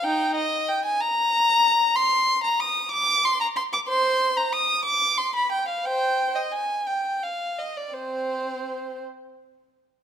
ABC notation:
X:1
M:6/8
L:1/16
Q:3/8=61
K:Eb
V:1 name="Violin"
[Eg]2 e2 g a b6 | [K:Cm] c'3 b e'2 d'2 c' b c' d' | [cc']3 b e'2 d'2 c' =b g f | [cg]3 e a2 g2 f2 e d |
[Cc]6 z6 |]